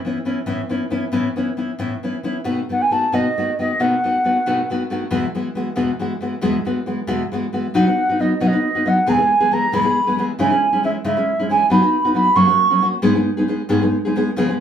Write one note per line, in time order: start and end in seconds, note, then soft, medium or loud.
0.05 0.17 E3 medium
0.05 0.18 B3 medium
0.05 0.18 C#4 medium
0.05 0.18 E4 medium
0.25 0.38 E3 soft
0.25 0.38 B3 soft
0.25 0.38 C#4 medium
0.25 0.38 E4 medium
0.46 0.61 A2 medium
0.46 0.61 E3 medium
0.46 0.61 B3 medium
0.46 0.61 C#4 medium
0.46 0.61 E4 medium
0.69 0.83 E3 medium
0.69 0.83 B3 medium
0.69 0.83 C#4 medium
0.69 0.83 E4 medium
0.90 1.04 E3 medium
0.90 1.04 B3 medium
0.90 1.04 C#4 medium
0.90 1.04 E4 medium
1.12 1.27 A2 medium
1.12 1.27 E3 medium
1.12 1.27 B3 medium
1.12 1.27 C#4 medium
1.12 1.27 E4 medium
1.36 1.49 E3 medium
1.36 1.49 B3 medium
1.36 1.49 C#4 medium
1.36 1.50 E4 medium
1.57 1.70 E3 soft
1.57 1.70 B3 soft
1.57 1.71 C#4 soft
1.57 1.71 E4 medium
1.79 1.93 A2 medium
1.79 1.94 E3 medium
1.79 1.94 B3 medium
1.79 1.94 C#4 medium
1.79 1.94 E4 medium
2.03 2.16 E3 soft
2.03 2.16 B3 soft
2.03 2.16 C#4 soft
2.03 2.17 E4 medium
2.23 2.37 E3 soft
2.23 2.37 B3 medium
2.23 2.37 C#4 medium
2.23 2.37 E4 medium
2.44 2.60 B2 medium
2.44 2.60 D#3 medium
2.44 2.60 A3 medium
2.44 2.60 B3 medium
2.44 2.60 F#4 medium
2.69 2.82 D#3 soft
2.69 2.83 A3 soft
2.69 2.83 B3 soft
2.69 2.83 F#4 medium
2.69 2.83 F#5 medium
2.82 2.93 G#5 medium
2.91 3.04 D#3 soft
2.91 3.04 A3 soft
2.91 3.04 B3 soft
2.91 3.04 F#4 medium
2.91 3.16 A5 medium
3.12 3.27 B2 medium
3.12 3.27 D#3 medium
3.12 3.27 A3 medium
3.12 3.27 B3 medium
3.12 3.28 F#4 medium
3.12 3.59 D#5 medium
3.38 3.50 D#3 soft
3.38 3.50 A3 medium
3.38 3.50 B3 medium
3.38 3.51 F#4 soft
3.59 3.71 D#3 soft
3.59 3.71 A3 soft
3.59 3.72 B3 medium
3.59 3.72 F#4 medium
3.59 3.82 D#5 medium
3.79 3.94 B2 medium
3.79 3.94 D#3 medium
3.79 3.94 A3 medium
3.79 3.94 B3 medium
3.79 3.94 F#4 medium
3.79 4.69 F#5 medium
4.04 4.16 D#3 soft
4.04 4.16 A3 soft
4.04 4.17 B3 soft
4.04 4.17 F#4 medium
4.24 4.37 D#3 soft
4.24 4.37 A3 soft
4.24 4.37 B3 medium
4.24 4.37 F#4 soft
4.46 4.60 B2 medium
4.46 4.60 D#3 medium
4.46 4.60 A3 medium
4.46 4.60 B3 medium
4.46 4.60 F#4 medium
4.70 4.82 D#3 medium
4.70 4.82 A3 medium
4.70 4.82 B3 medium
4.70 4.83 F#4 medium
4.90 5.02 D#3 medium
4.90 5.02 A3 medium
4.90 5.03 B3 medium
4.90 5.03 F#4 medium
5.11 5.25 E2 medium
5.11 5.25 B2 medium
5.11 5.25 E3 medium
5.11 5.25 G#3 medium
5.11 5.25 B3 medium
5.11 5.25 F#4 medium
5.35 5.47 E3 medium
5.35 5.47 G#3 medium
5.35 5.47 B3 medium
5.35 5.48 F#4 medium
5.55 5.68 E3 medium
5.55 5.68 G#3 soft
5.55 5.68 B3 soft
5.55 5.68 F#4 medium
5.76 5.90 E2 medium
5.76 5.90 B2 medium
5.76 5.90 E3 medium
5.76 5.91 G#3 medium
5.76 5.90 B3 medium
5.76 5.91 F#4 medium
5.99 6.12 E3 medium
5.99 6.12 G#3 medium
5.99 6.13 B3 medium
5.99 6.13 F#4 medium
6.21 6.33 E3 medium
6.21 6.34 G#3 medium
6.21 6.34 B3 medium
6.21 6.34 F#4 medium
6.41 6.56 E2 medium
6.41 6.56 B2 medium
6.41 6.56 E3 medium
6.41 6.56 G#3 medium
6.41 6.56 B3 medium
6.41 6.56 F#4 medium
6.65 6.78 E3 medium
6.65 6.78 G#3 medium
6.65 6.79 B3 medium
6.65 6.79 F#4 medium
6.86 6.99 E3 soft
6.86 6.99 G#3 medium
6.86 6.99 B3 soft
6.86 7.00 F#4 medium
7.07 7.22 E2 medium
7.07 7.22 B2 medium
7.07 7.22 E3 medium
7.07 7.22 G#3 medium
7.07 7.22 B3 medium
7.07 7.23 F#4 medium
7.32 7.44 E3 medium
7.32 7.45 G#3 medium
7.32 7.45 B3 medium
7.32 7.45 F#4 medium
7.53 7.66 E3 medium
7.53 7.66 G#3 soft
7.53 7.66 B3 medium
7.53 7.66 F#4 medium
7.74 7.86 B2 medium
7.74 7.86 F#3 medium
7.74 7.87 B3 medium
7.74 7.86 D#4 medium
7.74 7.85 F#4 medium
7.74 8.22 F#5 medium
7.87 8.01 B3 soft
7.87 8.01 D#4 soft
8.09 8.19 B3 soft
8.09 8.20 D#4 soft
8.09 8.20 F#4 soft
8.19 8.32 F#3 soft
8.19 8.33 B3 soft
8.19 8.33 D#4 medium
8.19 8.33 F#4 soft
8.19 8.41 D#5 medium
8.40 8.53 B2 medium
8.40 8.53 F#3 medium
8.40 8.53 B3 medium
8.40 8.52 D#4 medium
8.40 8.51 F#4 medium
8.40 8.49 F#5 medium
8.48 8.90 D#5 medium
8.52 8.67 B3 soft
8.52 8.67 D#4 soft
8.52 8.67 F#4 soft
8.75 8.84 B3 soft
8.75 8.86 D#4 soft
8.75 8.86 F#4 soft
8.85 8.98 F#3 medium
8.85 8.98 B3 medium
8.85 8.99 D#4 medium
8.85 8.99 F#4 medium
8.85 9.11 F#5 medium
9.06 9.19 E2 medium
9.06 9.19 B2 medium
9.06 9.19 E3 medium
9.06 9.18 G#3 medium
9.06 9.18 B3 medium
9.06 9.17 G#4 medium
9.06 9.13 A#5 medium
9.12 9.55 G#5 medium
9.19 9.34 E3 soft
9.19 9.33 G#3 soft
9.19 9.33 B3 soft
9.19 9.33 G#4 medium
9.40 9.50 E3 soft
9.40 9.51 G#3 soft
9.40 9.51 B3 soft
9.40 9.51 G#4 medium
9.51 9.64 E3 medium
9.51 9.64 G#3 medium
9.51 9.64 B3 soft
9.51 9.65 G#4 soft
9.51 9.76 A#5 medium
9.72 9.84 E2 medium
9.72 9.85 B2 medium
9.72 9.85 E3 medium
9.72 9.84 G#3 medium
9.72 9.84 B3 medium
9.72 9.83 G#4 medium
9.72 10.23 B5 medium
9.84 9.99 E3 soft
9.84 9.99 G#3 soft
9.84 9.99 B3 soft
9.84 9.98 G#4 soft
10.07 10.17 E3 soft
10.07 10.17 G#3 soft
10.07 10.18 B3 soft
10.07 10.17 G#4 soft
10.18 10.30 E3 medium
10.18 10.30 G#3 medium
10.18 10.31 B3 medium
10.18 10.31 G#4 medium
10.39 10.50 C#3 medium
10.39 10.50 E3 medium
10.39 10.50 G#3 medium
10.39 10.50 C#4 medium
10.39 10.49 E4 medium
10.39 10.81 G#5 medium
10.50 10.65 G#3 soft
10.50 10.65 C#4 soft
10.50 10.64 E4 soft
10.73 10.83 G#3 soft
10.73 10.83 C#4 medium
10.73 10.83 E4 soft
10.83 10.96 E3 medium
10.83 10.96 G#3 medium
10.83 10.96 C#4 soft
10.83 10.96 E4 medium
10.83 10.91 E5 medium
11.04 11.16 C#3 medium
11.04 11.16 E3 medium
11.04 11.16 G#3 medium
11.04 11.16 C#4 medium
11.04 11.15 E4 medium
11.04 11.47 E5 medium
11.17 11.31 G#3 soft
11.17 11.31 C#4 soft
11.17 11.30 E4 soft
11.39 11.49 G#3 soft
11.39 11.50 C#4 soft
11.39 11.49 E4 soft
11.50 11.62 E3 soft
11.50 11.62 G#3 medium
11.50 11.62 C#4 medium
11.50 11.63 E4 medium
11.50 11.69 G#5 medium
11.70 11.82 F#3 medium
11.70 11.82 B3 medium
11.70 11.81 D#4 medium
11.70 11.81 F#4 medium
11.70 12.13 B5 medium
11.82 11.97 B3 soft
11.82 11.96 D#4 soft
11.82 11.96 F#4 soft
12.05 12.13 B3 soft
12.05 12.14 D#4 soft
12.05 12.15 F#4 soft
12.15 12.27 F#3 soft
12.15 12.27 B3 soft
12.15 12.28 D#4 soft
12.15 12.28 F#4 medium
12.15 12.38 B5 medium
12.35 12.48 F#2 medium
12.35 12.48 C#3 medium
12.35 12.48 F#3 medium
12.35 12.48 A#3 medium
12.35 12.47 C#4 medium
12.35 12.47 F#4 medium
12.35 12.87 C#6 medium
12.48 12.63 F#3 soft
12.48 12.63 A#3 soft
12.48 12.63 C#4 soft
12.48 12.62 F#4 soft
12.70 12.80 F#3 soft
12.70 12.81 A#3 soft
12.70 12.81 C#4 soft
12.70 12.81 F#4 soft
12.81 12.94 F#3 soft
12.81 12.94 A#3 medium
12.81 12.95 C#4 soft
12.81 12.95 F#4 medium
13.02 13.14 G#2 medium
13.02 13.15 D#3 medium
13.02 13.15 G#3 medium
13.02 13.14 B3 medium
13.02 13.14 D#4 medium
13.02 13.13 G#4 medium
13.15 13.30 G#3 soft
13.15 13.29 B3 soft
13.15 13.29 D#4 soft
13.15 13.29 G#4 soft
13.37 13.47 G#3 soft
13.37 13.48 B3 medium
13.37 13.48 D#4 medium
13.37 13.48 G#4 soft
13.48 13.61 G#3 soft
13.48 13.61 B3 soft
13.48 13.61 D#4 medium
13.48 13.61 G#4 medium
13.69 13.81 G#2 medium
13.69 13.81 D#3 medium
13.69 13.81 G#3 medium
13.69 13.82 B3 medium
13.69 13.81 D#4 medium
13.69 13.80 G#4 medium
13.82 13.97 G#3 soft
13.82 13.96 B3 soft
13.82 13.96 D#4 soft
13.82 13.96 G#4 soft
14.05 14.14 G#3 soft
14.05 14.15 B3 soft
14.05 14.16 D#4 soft
14.05 14.15 G#4 medium
14.16 14.28 G#3 medium
14.16 14.28 B3 medium
14.16 14.28 D#4 medium
14.16 14.29 G#4 medium
14.36 14.48 C#3 medium
14.36 14.48 F3 medium
14.36 14.49 G#3 medium
14.36 14.48 B3 medium
14.36 14.47 G#4 medium
14.48 14.60 G#3 soft
14.48 14.60 B3 medium
14.48 14.60 G#4 soft